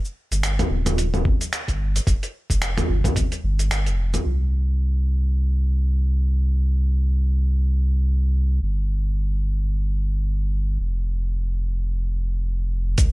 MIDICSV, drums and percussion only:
0, 0, Header, 1, 2, 480
1, 0, Start_track
1, 0, Tempo, 545455
1, 1826, Time_signature, 4, 2, 24, 8
1, 11546, End_track
2, 0, Start_track
2, 0, Title_t, "Drums"
2, 43, Note_on_c, 9, 69, 27
2, 131, Note_off_c, 9, 69, 0
2, 279, Note_on_c, 9, 42, 44
2, 281, Note_on_c, 9, 69, 61
2, 367, Note_off_c, 9, 42, 0
2, 369, Note_off_c, 9, 69, 0
2, 382, Note_on_c, 9, 26, 93
2, 382, Note_on_c, 9, 42, 57
2, 383, Note_on_c, 9, 69, 50
2, 470, Note_off_c, 9, 26, 0
2, 470, Note_off_c, 9, 42, 0
2, 471, Note_off_c, 9, 69, 0
2, 522, Note_on_c, 9, 42, 31
2, 522, Note_on_c, 9, 45, 77
2, 523, Note_on_c, 9, 69, 29
2, 610, Note_off_c, 9, 42, 0
2, 610, Note_off_c, 9, 45, 0
2, 611, Note_off_c, 9, 69, 0
2, 758, Note_on_c, 9, 42, 44
2, 758, Note_on_c, 9, 45, 77
2, 759, Note_on_c, 9, 69, 62
2, 846, Note_off_c, 9, 42, 0
2, 846, Note_off_c, 9, 45, 0
2, 847, Note_off_c, 9, 69, 0
2, 864, Note_on_c, 9, 42, 52
2, 865, Note_on_c, 9, 69, 53
2, 952, Note_off_c, 9, 42, 0
2, 953, Note_off_c, 9, 69, 0
2, 1001, Note_on_c, 9, 45, 79
2, 1002, Note_on_c, 9, 69, 30
2, 1089, Note_off_c, 9, 45, 0
2, 1090, Note_off_c, 9, 69, 0
2, 1102, Note_on_c, 9, 36, 100
2, 1190, Note_off_c, 9, 36, 0
2, 1241, Note_on_c, 9, 42, 44
2, 1242, Note_on_c, 9, 69, 59
2, 1329, Note_off_c, 9, 42, 0
2, 1330, Note_off_c, 9, 69, 0
2, 1344, Note_on_c, 9, 26, 95
2, 1344, Note_on_c, 9, 42, 57
2, 1345, Note_on_c, 9, 69, 52
2, 1432, Note_off_c, 9, 26, 0
2, 1432, Note_off_c, 9, 42, 0
2, 1433, Note_off_c, 9, 69, 0
2, 1479, Note_on_c, 9, 36, 51
2, 1482, Note_on_c, 9, 42, 29
2, 1484, Note_on_c, 9, 69, 29
2, 1567, Note_off_c, 9, 36, 0
2, 1570, Note_off_c, 9, 42, 0
2, 1572, Note_off_c, 9, 69, 0
2, 1723, Note_on_c, 9, 42, 43
2, 1725, Note_on_c, 9, 69, 57
2, 1811, Note_off_c, 9, 42, 0
2, 1813, Note_off_c, 9, 69, 0
2, 1821, Note_on_c, 9, 36, 105
2, 1824, Note_on_c, 9, 42, 58
2, 1825, Note_on_c, 9, 69, 52
2, 1909, Note_off_c, 9, 36, 0
2, 1912, Note_off_c, 9, 42, 0
2, 1913, Note_off_c, 9, 69, 0
2, 1962, Note_on_c, 9, 42, 32
2, 1964, Note_on_c, 9, 69, 29
2, 2050, Note_off_c, 9, 42, 0
2, 2052, Note_off_c, 9, 69, 0
2, 2199, Note_on_c, 9, 36, 55
2, 2203, Note_on_c, 9, 42, 43
2, 2205, Note_on_c, 9, 69, 64
2, 2287, Note_off_c, 9, 36, 0
2, 2291, Note_off_c, 9, 42, 0
2, 2293, Note_off_c, 9, 69, 0
2, 2303, Note_on_c, 9, 26, 104
2, 2303, Note_on_c, 9, 42, 56
2, 2304, Note_on_c, 9, 69, 52
2, 2391, Note_off_c, 9, 26, 0
2, 2391, Note_off_c, 9, 42, 0
2, 2392, Note_off_c, 9, 69, 0
2, 2443, Note_on_c, 9, 26, 29
2, 2443, Note_on_c, 9, 42, 30
2, 2443, Note_on_c, 9, 45, 78
2, 2444, Note_on_c, 9, 69, 34
2, 2531, Note_off_c, 9, 26, 0
2, 2531, Note_off_c, 9, 42, 0
2, 2531, Note_off_c, 9, 45, 0
2, 2532, Note_off_c, 9, 69, 0
2, 2678, Note_on_c, 9, 36, 93
2, 2683, Note_on_c, 9, 42, 44
2, 2683, Note_on_c, 9, 45, 78
2, 2684, Note_on_c, 9, 69, 63
2, 2766, Note_off_c, 9, 36, 0
2, 2771, Note_off_c, 9, 42, 0
2, 2771, Note_off_c, 9, 45, 0
2, 2772, Note_off_c, 9, 69, 0
2, 2780, Note_on_c, 9, 36, 97
2, 2784, Note_on_c, 9, 42, 56
2, 2785, Note_on_c, 9, 69, 52
2, 2868, Note_off_c, 9, 36, 0
2, 2872, Note_off_c, 9, 42, 0
2, 2873, Note_off_c, 9, 69, 0
2, 2920, Note_on_c, 9, 42, 31
2, 2922, Note_on_c, 9, 69, 30
2, 3008, Note_off_c, 9, 42, 0
2, 3010, Note_off_c, 9, 69, 0
2, 3162, Note_on_c, 9, 42, 43
2, 3163, Note_on_c, 9, 69, 61
2, 3250, Note_off_c, 9, 42, 0
2, 3251, Note_off_c, 9, 69, 0
2, 3265, Note_on_c, 9, 26, 103
2, 3265, Note_on_c, 9, 42, 58
2, 3267, Note_on_c, 9, 69, 51
2, 3353, Note_off_c, 9, 26, 0
2, 3353, Note_off_c, 9, 42, 0
2, 3355, Note_off_c, 9, 69, 0
2, 3401, Note_on_c, 9, 42, 31
2, 3402, Note_on_c, 9, 69, 30
2, 3489, Note_off_c, 9, 42, 0
2, 3490, Note_off_c, 9, 69, 0
2, 3641, Note_on_c, 9, 42, 42
2, 3641, Note_on_c, 9, 45, 58
2, 3643, Note_on_c, 9, 69, 56
2, 3729, Note_off_c, 9, 42, 0
2, 3729, Note_off_c, 9, 45, 0
2, 3731, Note_off_c, 9, 69, 0
2, 11420, Note_on_c, 9, 42, 57
2, 11422, Note_on_c, 9, 69, 57
2, 11423, Note_on_c, 9, 36, 114
2, 11508, Note_off_c, 9, 42, 0
2, 11510, Note_off_c, 9, 69, 0
2, 11511, Note_off_c, 9, 36, 0
2, 11546, End_track
0, 0, End_of_file